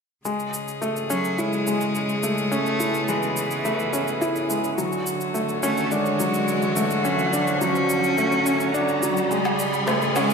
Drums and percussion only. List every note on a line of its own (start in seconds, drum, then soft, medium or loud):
0.25 shaker soft
0.40 shaker soft
0.54 shaker medium
0.68 shaker soft
0.82 shaker soft
0.97 shaker soft
1.10 shaker medium
1.25 shaker soft
1.39 shaker soft
1.53 shaker soft
1.67 shaker medium
1.81 shaker soft
1.95 shaker soft
2.09 shaker soft
2.23 shaker medium
2.38 shaker soft
2.52 shaker soft
2.66 shaker soft
2.80 shaker medium
2.94 shaker soft
3.09 shaker soft
3.23 shaker soft
3.37 shaker medium
3.51 shaker soft
3.65 shaker soft
3.79 shaker soft
3.94 shaker medium
4.08 shaker soft
4.22 shaker soft
4.36 shaker soft
4.50 shaker medium
4.64 shaker soft
4.78 shaker soft
4.92 shaker soft
5.07 shaker medium
5.21 shaker soft
5.35 shaker soft
5.49 shaker soft
5.63 shaker medium
5.77 shaker soft
5.91 shaker soft
6.06 shaker soft
6.20 shaker medium
6.34 shaker soft
6.48 shaker soft
6.62 shaker soft
6.76 shaker medium
6.91 shaker soft
7.05 shaker soft
7.19 shaker soft
7.33 shaker medium
7.47 shaker soft
7.61 shaker soft
7.75 shaker soft
7.90 shaker medium
8.04 shaker soft
8.18 shaker soft
8.32 shaker soft
8.46 shaker medium
8.60 shaker soft
8.75 shaker soft
8.88 shaker soft
9.03 shaker medium
9.17 shaker soft
9.31 shaker soft
9.45 low woodblock medium
9.45 shaker soft
9.59 shaker medium
9.74 shaker soft
9.88 cross-stick medium
9.88 shaker soft
10.02 shaker soft
10.16 low woodblock medium
10.16 shaker medium
10.30 shaker soft